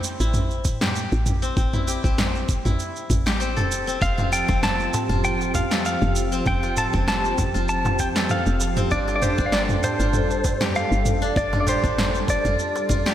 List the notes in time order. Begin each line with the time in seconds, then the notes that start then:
Already playing: C4 D4 E4 G4
0.04 shaker
0.20 A1 E4, shaker
0.34 mid tom, shaker
0.51 shaker
0.65 A2, kick, shaker
0.81 G4, snare, mid tom, shaker
0.96 shaker
1.12 A1, shaker
1.26 mid tom, shaker
1.42 C4, shaker
1.57 A1 C4, kick, shaker
1.73 E4, mid tom, shaker
1.87 G4, shaker
2.04 A1 C4, kick, shaker
2.18 snare, mid tom, shaker
2.35 shaker
2.49 kick, shaker
2.65 A1 E4, mid tom, shaker
2.80 shaker
2.96 shaker
3.10 A1, kick, mid tom, shaker
3.26 G4, snare, shaker
3.40 C4, shaker
3.56 E1 A4, mid tom, shaker
3.72 shaker
3.87 C4, shaker
4.01 F1 F3 C4 G4 F5, kick, shaker
4.18 F4, mid tom, darbuka tek, shaker
4.32 A4 G5, shaker
4.48 F1 C4, kick, darbuka tek, shaker
4.63 A5, snare, mid tom, shaker
4.80 shaker
4.94 darbuka tek, darbuka dum, shaker
5.09 F1 F4, mid tom, shaker
5.24 G5, shaker
5.41 darbuka ka, shaker
5.54 F2 F5, kick, mid tom, darbuka tek, shaker
5.71 A4, snare, shaker
5.85 F5, shaker
6.02 F1, mid tom, shaker
6.16 shaker
6.32 C4, shaker
6.46 F1 C4 G5, kick, mid tom, shaker
6.63 F4, darbuka tek, shaker
6.77 A4 A5, darbuka dum, shaker
6.93 F1 C4, kick, mid tom, darbuka tek, shaker
7.08 A5, snare, shaker
7.24 darbuka ka, shaker
7.38 kick, mid tom, darbuka tek, shaker
7.54 F1 F4, shaker
7.69 A5, shaker
7.85 mid tom, darbuka ka, darbuka tek, shaker
7.99 F2 G5, kick, darbuka ka, shaker
8.16 A4, snare, shaker
8.29 F5, mid tom, shaker
8.46 F1, darbuka ka, shaker
8.60 darbuka tek, shaker
8.77 C4, mid tom, shaker
8.91 G1 G3 D4 A4 D5, kick, shaker
9.08 F4, darbuka tek, shaker
9.16 D5
9.22 G4 C5, mid tom, shaker
9.38 G1 D4, kick, darbuka tek, shaker
9.46 F5
9.52 D5, snare, shaker
9.69 mid tom, shaker
9.83 C5, darbuka tek, darbuka dum, shaker
10.00 G1 F4, shaker
10.13 mid tom, shaker
10.30 darbuka ka, shaker
10.44 G2, kick, darbuka tek, shaker
10.61 G4, snare, mid tom, shaker
10.75 F5, shaker
10.92 G1, shaker
11.05 mid tom, shaker
11.22 D4, shaker
11.36 G1 D4 D5, kick, shaker
11.53 F4, mid tom, darbuka tek, shaker
11.60 D5
11.67 G4 C5, darbuka dum, shaker
11.84 G1 D4, kick, darbuka tek, shaker
11.98 snare, mid tom, shaker
12.14 darbuka ka, shaker
12.28 D5, kick, darbuka tek, shaker
12.45 G1 F4, mid tom, shaker
12.59 shaker
12.76 darbuka ka, darbuka tek, shaker
12.89 G1 F4, kick, mid tom, darbuka ka, shaker
13.06 G4, snare, shaker